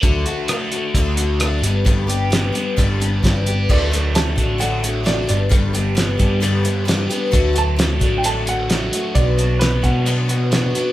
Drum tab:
CC |--------|--------|x-------|--------|
HH |xxxxxxxx|xxxxxxxx|-xxxxxxx|xxxxxxxx|
SD |--r---r-|--o---o-|--o---o-|--o---o-|
BD |o---o---|o---o-o-|o--o----|o--o----|

CC |--------|--------|
HH |xxxxxxxx|xxxxxxxx|
SD |--o---o-|--o---o-|
BD |o--o----|o--o----|